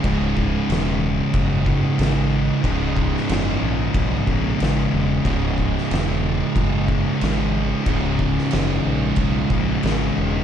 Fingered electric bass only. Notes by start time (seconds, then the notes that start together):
0.04 C#1
0.69 E1
1.34 F#1
1.99 G#1
2.64 C#1
3.29 F#1
3.62 A#1
3.95 B1
4.27 A#1
4.61 G#1
4.93 E1
5.26 C#1
5.91 E1
6.56 F#1
7.21 G#1
7.86 C#1
8.53 F#1
8.86 A#1
9.17 B1
9.50 A#1
9.83 G#1
10.18 E1